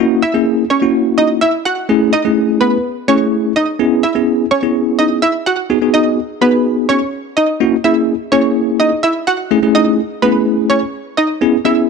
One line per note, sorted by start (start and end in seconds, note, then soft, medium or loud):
0.00 0.20 A#3 medium
0.00 0.20 C#4 medium
0.00 0.21 E4 medium
0.00 0.21 F#4 medium
0.22 0.31 E4 medium
0.22 0.31 E5 medium
0.34 0.63 A#3 medium
0.34 0.64 C#4 medium
0.34 0.64 E4 medium
0.34 0.64 G#4 medium
0.70 1.04 C#4 medium
0.70 1.04 C#5 medium
0.82 1.41 A#3 medium
0.82 1.41 C#4 medium
0.82 1.41 E4 medium
0.82 1.41 F#4 medium
1.18 1.26 D#4 medium
1.18 1.26 D#5 medium
1.41 1.50 E4 medium
1.41 1.50 E5 medium
1.65 1.74 F#4 medium
1.65 1.74 F#5 medium
1.89 2.11 A3 medium
1.89 2.11 C#4 medium
1.89 2.11 E4 medium
1.89 2.11 G#4 loud
2.13 2.22 D#4 medium
2.13 2.21 D#5 medium
2.25 2.76 A3 medium
2.25 2.76 C#4 medium
2.25 2.76 E4 medium
2.25 2.76 G#4 medium
2.61 2.95 B3 medium
2.61 2.94 B4 medium
3.08 3.52 A3 medium
3.08 3.52 C#4 medium
3.08 3.17 C#4 medium
3.08 3.52 E4 medium
3.08 3.52 G#4 medium
3.08 3.16 C#5 medium
3.56 3.65 D#4 medium
3.56 3.64 D#5 medium
3.79 4.01 B3 medium
3.79 4.02 C#4 medium
3.79 4.02 E4 medium
3.79 4.02 G#4 medium
4.03 4.12 E4 medium
4.03 4.12 E5 medium
4.15 4.44 B3 medium
4.15 4.45 C#4 medium
4.15 4.45 E4 medium
4.15 4.45 G#4 medium
4.51 4.85 C#4 medium
4.51 4.85 C#5 medium
4.63 5.21 B3 medium
4.63 5.22 C#4 medium
4.63 5.22 E4 medium
4.63 5.22 G#4 medium
4.99 5.07 D#4 medium
4.99 5.07 D#5 medium
5.22 5.31 E4 medium
5.22 5.31 E5 medium
5.46 5.55 F#4 medium
5.46 5.55 F#5 medium
5.70 5.77 B3 medium
5.70 5.77 D#4 medium
5.70 5.77 F#4 medium
5.70 5.77 G#4 medium
5.82 6.18 B3 medium
5.82 6.19 D#4 medium
5.82 6.19 F#4 medium
5.82 6.19 G#4 medium
5.94 6.03 D#4 medium
5.94 6.02 D#5 medium
6.41 7.00 B3 medium
6.41 6.75 B3 medium
6.41 7.00 D#4 medium
6.41 7.00 F#4 medium
6.41 7.00 G#4 medium
6.41 6.75 B4 medium
6.89 6.98 C#4 medium
6.89 6.97 C#5 medium
7.37 7.45 D#4 medium
7.37 7.45 D#5 medium
7.60 7.75 A#3 medium
7.60 7.75 C#4 medium
7.60 7.75 E4 medium
7.60 7.75 F#4 medium
7.84 8.14 A#3 medium
7.84 8.14 C#4 medium
7.84 8.14 E4 medium
7.84 7.93 E4 medium
7.84 8.14 G#4 medium
7.84 7.92 E5 medium
8.32 8.91 A#3 medium
8.32 8.91 C#4 medium
8.32 8.66 C#4 medium
8.32 8.91 E4 medium
8.32 8.91 G#4 medium
8.32 8.65 C#5 medium
8.80 8.88 D#4 medium
8.80 8.88 D#5 medium
9.03 9.12 E4 medium
9.03 9.11 E5 medium
9.27 9.36 F#4 medium
9.27 9.35 F#5 medium
9.51 9.58 A3 medium
9.51 9.58 C#4 medium
9.51 9.58 E4 medium
9.51 9.59 G#4 medium
9.62 9.99 A3 medium
9.62 9.99 C#4 medium
9.62 9.99 E4 medium
9.62 10.00 G#4 medium
9.75 9.83 D#4 medium
9.75 9.83 D#5 medium
10.22 10.81 A3 medium
10.22 10.56 B3 medium
10.22 10.81 C#4 medium
10.22 10.81 E4 medium
10.22 10.81 G#4 medium
10.22 10.56 B4 medium
10.70 10.79 C#4 medium
10.70 10.78 C#5 medium
11.17 11.26 D#4 medium
11.17 11.26 D#5 medium
11.41 11.56 B3 medium
11.41 11.56 C#4 medium
11.41 11.56 E4 medium
11.41 11.56 G#4 loud
11.65 11.89 B3 medium
11.65 11.89 C#4 medium
11.65 11.89 E4 medium
11.65 11.74 E4 medium
11.65 11.89 G#4 medium
11.65 11.73 E5 medium